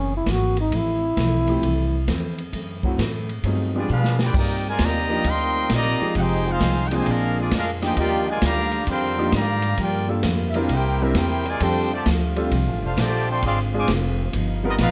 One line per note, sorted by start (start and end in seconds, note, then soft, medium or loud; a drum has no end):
0.00 0.24 F#1 medium
0.00 0.12 F#2 soft
0.00 0.13 E3 soft
0.00 0.13 A#3 soft
0.00 0.13 C4 medium
0.00 0.14 C#4 medium
0.17 0.33 E4 medium
0.26 0.70 G#1 medium
0.26 0.58 F#2 medium
0.26 0.58 E3 medium
0.26 0.58 A#3 medium
0.26 0.58 C4 medium
0.26 kick soft
0.26 snare medium
0.26 hi-hat pedal medium
0.26 ride medium
0.31 0.59 F#4 loud
0.57 ride medium
0.61 0.78 D#4 medium
0.71 1.15 A1 medium
0.71 1.03 F2 medium
0.71 1.04 E3 soft
0.71 1.04 A3 soft
0.71 1.04 C4 medium
0.71 kick soft
0.71 ride medium
0.76 2.10 E4 loud
1.16 1.61 B1 medium
1.16 1.48 F2 medium
1.16 1.49 E3 medium
1.16 1.49 A3 medium
1.16 1.49 C4 medium
1.16 kick soft
1.16 snare medium
1.16 hi-hat pedal medium
1.16 ride medium
1.47 1.61 F3 medium
1.47 1.61 A3 medium
1.47 1.61 C4 medium
1.47 1.62 E4 medium
1.47 1.62 G4 medium
1.47 ride medium
1.61 2.06 C2 medium
1.61 1.94 F2 medium
1.61 1.94 E3 medium
1.61 1.94 A3 medium
1.61 1.95 C4 medium
1.61 kick soft
1.61 ride medium
2.07 2.52 E2 medium
2.07 2.39 F2 medium
2.07 2.39 E3 medium
2.07 2.40 A3 medium
2.07 2.40 C4 medium
2.07 kick soft
2.07 snare medium
2.07 hi-hat pedal medium
2.07 ride medium
2.38 ride soft
2.52 2.84 F#2 medium
2.52 2.97 F#2 medium
2.52 2.85 E3 medium
2.52 2.85 A3 medium
2.52 2.85 C4 medium
2.52 kick soft
2.52 ride medium
2.83 2.97 F#3 medium
2.83 2.98 A3 medium
2.83 2.98 C4 medium
2.83 2.98 E4 medium
2.83 2.98 F#4 medium
2.83 kick medium
2.97 3.30 F#2 medium
2.97 3.42 A2 medium
2.97 3.30 E3 medium
2.97 3.30 A3 medium
2.97 3.30 C4 medium
2.97 kick soft
2.97 snare medium
2.97 hi-hat pedal medium
2.97 ride medium
3.29 ride medium
3.43 3.87 G2 medium
3.43 3.71 F#3 medium
3.43 3.76 G3 soft
3.43 3.72 A3 medium
3.43 3.76 B3 medium
3.43 3.72 C4 medium
3.43 3.72 D#4 medium
3.43 3.76 F4 medium
3.43 3.72 G#4 medium
3.43 3.77 G#4 medium
3.43 kick soft
3.43 ride medium
3.75 4.14 F3 medium
3.75 3.89 F3 medium
3.75 4.14 G#3 medium
3.75 4.14 B3 medium
3.75 3.89 B3 medium
3.75 3.90 B3 medium
3.75 3.89 D4 medium
3.75 4.14 D4 medium
3.75 3.89 F4 medium
3.75 4.14 G4 medium
3.75 3.90 G#4 medium
3.75 3.90 D5 medium
3.88 4.33 B2 medium
3.88 4.20 G3 medium
3.88 4.21 B3 medium
3.88 4.18 B3 medium
3.88 4.18 D4 medium
3.88 4.21 F4 medium
3.88 4.19 F4 medium
3.88 4.21 G#4 medium
3.88 4.19 G#4 medium
3.88 4.19 B4 medium
3.88 hi-hat pedal soft
3.92 4.19 D4 medium
3.92 4.19 F5 loud
4.04 snare medium
4.19 4.35 B3 medium
4.19 4.35 D4 medium
4.19 4.34 G4 medium
4.19 snare medium
4.24 4.37 F4 medium
4.24 4.37 B4 medium
4.24 4.37 D5 medium
4.24 4.37 G5 medium
4.34 4.78 G2 medium
4.34 4.66 C3 soft
4.34 6.14 A#3 medium
4.34 4.63 A#3 medium
4.34 4.67 A#3 medium
4.34 6.14 C4 medium
4.34 6.14 D#4 medium
4.34 4.63 D#4 medium
4.34 4.67 D#4 medium
4.34 6.14 F4 loud
4.34 4.67 F4 medium
4.34 4.63 G4 medium
4.34 kick medium
4.34 crash medium
4.38 4.65 D#4 medium
4.38 4.64 A#4 medium
4.38 4.65 D5 medium
4.38 4.65 G5 loud
4.67 4.81 G#3 medium
4.67 4.83 F4 medium
4.67 4.82 A#4 loud
4.67 4.82 D5 medium
4.67 4.82 G#5 loud
4.79 5.23 D#2 loud
4.79 5.11 C3 medium
4.79 5.26 D#3 medium
4.79 5.26 G3 medium
4.79 5.11 A#3 medium
4.79 5.26 A#3 medium
4.79 5.12 D#4 medium
4.79 5.12 F4 medium
4.79 kick soft
4.79 snare medium
4.79 hi-hat pedal medium
4.79 ride medium
4.84 5.27 G4 medium
4.84 5.27 D5 loud
4.84 5.27 D#5 medium
4.84 5.27 A#5 loud
5.09 5.23 F3 medium
5.09 5.23 A#3 medium
5.09 5.23 D4 medium
5.09 5.24 D#4 medium
5.09 5.24 G4 medium
5.24 5.69 D2 medium
5.24 5.57 C3 medium
5.24 5.71 G3 loud
5.24 5.57 A#3 medium
5.24 5.57 D#4 medium
5.24 5.58 F4 medium
5.24 kick soft
5.24 ride medium
5.28 5.72 C4 loud
5.28 5.72 D#4 loud
5.28 5.72 A#4 loud
5.28 5.72 D#5 loud
5.28 5.72 G5 loud
5.28 5.72 C6 loud
5.69 5.98 A#1 loud
5.69 6.02 C3 medium
5.69 6.10 D#3 medium
5.69 6.10 G3 loud
5.69 6.02 A#3 medium
5.69 6.10 A#3 loud
5.69 6.02 D#4 medium
5.69 6.03 F4 medium
5.69 kick soft
5.69 snare medium
5.69 hi-hat pedal medium
5.69 ride medium
5.75 6.13 G4 medium
5.75 6.12 D5 loud
5.75 6.12 D#5 loud
5.75 6.13 A#5 loud
6.00 6.58 F3 medium
6.00 6.58 G#3 medium
6.00 6.58 C4 medium
6.00 6.58 D#4 medium
6.00 6.59 G#4 medium
6.00 muted upright bass stroke soft
6.15 6.60 F1 medium
6.15 6.47 F3 medium
6.15 7.05 F3 medium
6.15 7.95 G#3 medium
6.15 6.48 G#3 soft
6.15 6.46 C4 medium
6.15 7.06 D#4 medium
6.15 6.48 D#4 medium
6.15 6.47 D#4 medium
6.15 6.47 G4 medium
6.15 6.48 G4 medium
6.15 6.19 F#5 medium
6.15 kick soft
6.15 ride medium
6.21 6.49 D#4 medium
6.21 6.49 G#4 medium
6.21 6.49 C5 loud
6.21 6.49 G5 loud
6.48 6.85 G#3 medium
6.48 6.85 C4 medium
6.48 6.86 D#4 loud
6.48 6.85 F4 medium
6.48 6.86 G#4 loud
6.48 6.87 C5 loud
6.48 6.87 F5 loud
6.60 7.05 C2 loud
6.60 6.93 F3 medium
6.60 6.93 G#3 medium
6.60 6.93 D#4 medium
6.60 6.94 G4 medium
6.60 kick soft
6.60 snare medium
6.60 hi-hat pedal medium
6.60 ride medium
6.88 7.49 F3 medium
6.88 7.49 A#3 medium
6.88 7.49 C4 medium
6.88 6.94 G5 medium
6.88 ride medium
6.92 7.08 C3 medium
6.92 7.08 D#3 medium
6.92 7.05 G#3 medium
6.92 7.49 D4 medium
6.92 7.09 D#4 medium
6.92 7.49 G#4 medium
6.92 7.08 C5 medium
6.92 7.09 G#5 medium
6.96 7.09 G4 medium
7.06 7.50 A#1 loud
7.06 7.39 A#2 medium
7.06 7.97 D3 medium
7.06 7.37 G#3 medium
7.06 7.39 G#3 medium
7.06 7.97 A#3 medium
7.06 7.37 D4 medium
7.06 7.39 D4 medium
7.06 7.37 F4 medium
7.06 9.77 F4 loud
7.06 7.40 F4 medium
7.06 kick soft
7.06 ride medium
7.11 7.39 D4 medium
7.11 7.40 G#4 medium
7.11 7.39 A#4 medium
7.11 7.40 F5 loud
7.38 7.51 F3 medium
7.38 7.52 G#3 medium
7.38 7.53 A#3 medium
7.38 7.51 D4 medium
7.38 7.53 F4 medium
7.38 7.53 G#4 medium
7.38 7.53 D5 medium
7.51 7.96 F2 loud
7.51 7.84 A#2 medium
7.51 7.84 G#3 medium
7.51 7.66 G#3 medium
7.51 7.84 D4 medium
7.51 7.66 D4 medium
7.51 7.66 F4 medium
7.51 7.84 F4 medium
7.51 kick soft
7.51 snare medium
7.51 hi-hat pedal medium
7.51 ride medium
7.58 7.71 D4 medium
7.58 7.71 G#4 medium
7.58 7.71 A#4 medium
7.58 7.71 F5 loud
7.82 7.95 F3 medium
7.82 7.96 A#3 medium
7.82 7.96 D4 medium
7.82 7.96 D#4 medium
7.82 7.96 G4 medium
7.82 snare medium
7.82 ride medium
7.86 7.99 D#4 medium
7.86 7.99 G#4 medium
7.86 7.98 C5 medium
7.86 7.98 G5 loud
7.97 8.41 D#2 medium
7.97 9.76 D3 medium
7.97 8.29 D#3 medium
7.97 8.25 F3 medium
7.97 13.39 G3 medium
7.97 8.29 G3 medium
7.97 8.25 A#3 medium
7.97 8.26 A#3 medium
7.97 9.77 D4 medium
7.97 8.25 D4 medium
7.97 8.26 D4 medium
7.97 8.30 D4 soft
7.97 8.25 D#4 medium
7.97 8.30 F4 medium
7.97 8.26 G4 medium
7.97 8.25 G4 medium
7.97 8.27 A#4 medium
7.97 8.27 G5 loud
7.97 kick soft
7.97 ride medium
8.01 8.27 F4 medium
8.01 8.27 D5 medium
8.28 8.42 G#3 medium
8.28 8.44 F4 medium
8.28 8.44 A#4 medium
8.28 8.43 D5 medium
8.28 8.44 G#5 loud
8.41 8.86 D2 medium
8.41 8.84 D3 medium
8.41 8.74 D#3 medium
8.41 8.84 G3 medium
8.41 8.75 G3 medium
8.41 8.84 A#3 medium
8.41 8.75 D4 medium
8.41 8.75 F4 medium
8.41 8.86 A#5 loud
8.41 kick soft
8.41 snare medium
8.41 hi-hat pedal medium
8.41 ride medium
8.46 8.87 G4 medium
8.46 8.87 D5 medium
8.46 8.87 F5 medium
8.72 ride medium
8.87 9.32 F2 medium
8.87 9.30 D3 loud
8.87 9.19 D#3 soft
8.87 9.20 G3 medium
8.87 9.30 G3 medium
8.87 9.30 C4 loud
8.87 9.20 D4 medium
8.87 9.20 F4 medium
8.87 9.32 C6 loud
8.87 kick soft
8.87 ride medium
8.91 9.32 A#4 medium
8.91 9.32 F5 medium
8.91 9.32 G5 loud
9.18 9.32 F3 medium
9.18 9.32 A#3 medium
9.18 9.32 D4 medium
9.18 9.32 D#4 medium
9.18 9.32 G4 medium
9.32 9.77 G#2 medium
9.32 9.79 D3 medium
9.32 9.65 D#3 medium
9.32 9.65 G3 medium
9.32 9.79 G3 medium
9.32 9.79 A#3 medium
9.32 9.65 D4 medium
9.32 9.65 F4 medium
9.32 kick soft
9.32 snare medium
9.32 hi-hat pedal medium
9.32 ride medium
9.36 9.80 G4 medium
9.36 9.80 D5 medium
9.36 9.80 F5 medium
9.36 9.80 A#5 loud
9.62 ride medium
9.77 10.10 G2 soft
9.77 10.23 G2 medium
9.77 10.68 D3 medium
9.77 10.11 F3 medium
9.77 11.58 A#3 medium
9.77 10.11 A#3 medium
9.77 10.08 A#3 medium
9.77 10.08 D4 medium
9.77 10.11 D4 soft
9.77 10.69 F4 medium
9.77 10.08 G4 medium
9.77 kick soft
9.77 ride medium
9.81 10.09 F4 medium
9.81 10.09 A#4 medium
9.81 10.09 D5 medium
9.81 10.09 G5 medium
10.08 10.22 G3 medium
10.08 10.23 A#3 medium
10.08 10.23 D4 medium
10.08 10.23 F4 medium
10.08 10.23 A4 medium
10.23 10.68 F2 medium
10.23 10.56 G2 medium
10.23 10.56 F3 medium
10.23 10.57 A#3 medium
10.23 10.57 D4 medium
10.23 kick soft
10.23 snare medium
10.23 hi-hat pedal medium
10.23 ride medium
10.49 10.56 E5 medium
10.54 10.69 G3 medium
10.54 10.71 A#3 medium
10.54 10.69 C4 medium
10.54 10.69 D4 medium
10.54 10.71 D4 medium
10.54 10.69 E4 medium
10.54 10.71 F4 medium
10.54 10.69 A#4 medium
10.54 ride medium
10.60 10.73 D4 medium
10.60 10.72 G4 medium
10.60 10.73 A#4 medium
10.60 10.73 F5 medium
10.68 11.13 C2 medium
10.68 11.01 C3 medium
10.68 11.61 C3 medium
10.68 11.02 A#3 medium
10.68 11.02 E4 soft
10.68 11.61 E4 medium
10.68 11.03 G4 medium
10.68 11.01 G4 medium
10.68 kick soft
10.68 ride medium
10.73 11.02 A#3 medium
10.73 11.02 E4 medium
10.73 11.02 A#4 medium
10.73 11.03 C5 medium
10.73 11.03 G5 medium
11.01 11.15 G3 medium
11.01 11.17 G3 medium
11.01 11.16 A#3 medium
11.01 11.14 C4 medium
11.01 11.17 C4 medium
11.01 11.15 D4 medium
11.01 11.15 E4 medium
11.01 11.16 E4 medium
11.01 11.17 G4 medium
11.01 11.15 A#4 medium
11.01 11.17 A#4 medium
11.01 11.17 E5 medium
11.14 11.59 E2 loud
11.14 11.47 C3 medium
11.14 11.47 A#3 medium
11.14 11.48 E4 medium
11.14 11.47 E4 medium
11.14 11.48 G4 medium
11.14 11.46 G4 medium
11.14 11.47 A#4 medium
11.14 11.47 C5 medium
11.14 11.47 G5 loud
11.14 kick soft
11.14 snare medium
11.14 hi-hat pedal medium
11.14 ride medium
11.19 11.47 E4 medium
11.45 11.62 G#3 medium
11.45 11.62 F4 medium
11.45 11.63 A#4 medium
11.45 11.62 D5 medium
11.45 11.63 G#5 loud
11.45 ride medium
11.60 12.05 F2 medium
11.60 14.31 D3 medium
11.60 11.93 F3 soft
11.60 11.89 G3 medium
11.60 11.93 A3 medium
11.60 13.41 A3 medium
11.60 11.89 C4 medium
11.60 11.92 C4 medium
11.60 11.93 D4 soft
11.60 11.92 D4 medium
11.60 11.89 D4 medium
11.60 13.41 F4 loud
11.60 11.89 F4 medium
11.60 11.92 G4 medium
11.60 11.94 G4 medium
11.60 11.92 A4 medium
11.60 11.89 A4 medium
11.60 11.92 C5 loud
11.60 11.92 G5 loud
11.60 kick soft
11.60 ride medium
11.92 12.05 C3 medium
11.92 12.06 D3 medium
11.92 12.06 A3 medium
11.92 12.07 G4 medium
11.92 12.07 C5 medium
11.92 12.07 D5 medium
11.92 12.07 A5 loud
12.06 12.50 D2 medium
12.06 12.38 F3 medium
12.06 12.38 A3 medium
12.06 12.38 D4 medium
12.06 12.39 G4 medium
12.06 kick soft
12.06 snare medium
12.06 hi-hat pedal medium
12.06 ride medium
12.36 12.50 G3 medium
12.36 12.50 C4 medium
12.36 12.51 D4 medium
12.36 12.51 F4 medium
12.36 12.51 A4 medium
12.36 ride medium
12.51 12.67 C2 medium
12.51 12.84 F3 medium
12.51 12.84 A3 medium
12.51 12.85 D4 medium
12.51 12.85 G4 medium
12.51 kick soft
12.51 ride medium
12.67 12.82 A1 medium
12.82 12.96 F1 medium
12.82 12.98 C4 medium
12.82 12.98 D4 medium
12.82 12.97 F4 medium
12.82 12.98 A4 medium
12.82 12.97 C5 medium
12.82 12.98 F5 medium
12.97 13.41 A#1 loud
12.97 13.29 C3 medium
12.97 13.29 D3 medium
12.97 13.29 F3 medium
12.97 13.30 A3 medium
12.97 13.29 A3 medium
12.97 13.30 D4 medium
12.97 13.29 G4 medium
12.97 13.30 G4 medium
12.97 13.28 C5 medium
12.97 13.28 D5 medium
12.97 13.29 A5 loud
12.97 kick soft
12.97 snare medium
12.97 hi-hat pedal medium
12.97 ride medium
13.30 13.43 D3 medium
13.30 13.43 A3 medium
13.30 13.43 C4 medium
13.30 13.44 A4 medium
13.30 13.44 D5 medium
13.30 13.44 G5 medium
13.30 13.43 C6 loud
13.42 13.87 G#1 medium
13.42 13.74 D3 medium
13.42 13.58 F3 medium
13.42 14.33 G#3 medium
13.42 13.58 G#3 medium
13.42 14.32 C4 medium
13.42 13.75 C4 soft
13.42 13.58 C4 medium
13.42 14.32 F4 medium
13.42 13.75 F4 medium
13.42 13.75 G#4 medium
13.42 kick soft
13.42 ride medium
13.46 13.59 G#4 medium
13.46 13.59 D5 medium
13.46 13.59 F5 medium
13.46 13.60 C6 loud
13.74 13.88 F3 medium
13.74 13.87 G#3 medium
13.74 13.88 G#3 medium
13.74 13.87 C4 medium
13.74 13.87 D4 medium
13.74 13.88 D4 medium
13.74 13.87 F4 medium
13.74 13.88 G#4 medium
13.78 13.90 C5 medium
13.78 13.90 F5 medium
13.78 13.90 G#5 medium
13.78 13.91 D6 loud
13.88 14.32 F1 medium
13.88 14.20 D3 medium
13.88 14.20 C4 medium
13.88 14.21 F4 medium
13.88 14.21 G#4 medium
13.88 kick soft
13.88 snare medium
13.88 hi-hat pedal medium
13.88 ride medium
14.33 14.78 G1 medium
14.33 14.65 G2 medium
14.33 14.66 F3 medium
14.33 14.91 G3 medium
14.33 14.91 B3 medium
14.33 14.66 B3 medium
14.33 14.91 D#4 medium
14.33 14.66 D#4 medium
14.33 14.91 F4 loud
14.33 kick soft
14.33 ride medium
14.63 14.73 F3 medium
14.63 14.77 G3 medium
14.63 14.78 B3 medium
14.63 14.73 B3 medium
14.63 14.78 D#4 medium
14.63 14.73 D#4 medium
14.63 14.78 F4 medium
14.63 14.78 A#4 medium
14.69 14.74 B3 medium
14.69 14.75 F4 medium
14.69 14.75 A#4 medium
14.69 14.75 D#5 medium
14.78 14.91 A#1 medium
14.78 14.91 G2 medium
14.78 14.91 F3 medium
14.78 14.91 B3 medium
14.78 14.91 D#4 medium
14.78 14.91 F4 medium
14.78 kick soft
14.78 snare medium
14.78 hi-hat pedal medium
14.78 ride medium
14.83 14.91 D#4 medium
14.83 14.91 A#4 medium
14.83 14.91 B4 medium
14.83 14.91 F5 loud